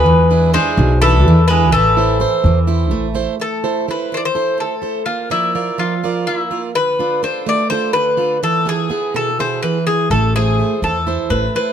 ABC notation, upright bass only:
X:1
M:7/8
L:1/8
Q:1/4=125
K:Am
V:1 name="Upright bass" clef=bass
E,,3 B,,,2 E,,2 | A,,,3 E,,2 A,,,2 | z6 z | z6 z |
z6 z | z6 z | A,,,3 E,,2 A,,, z |]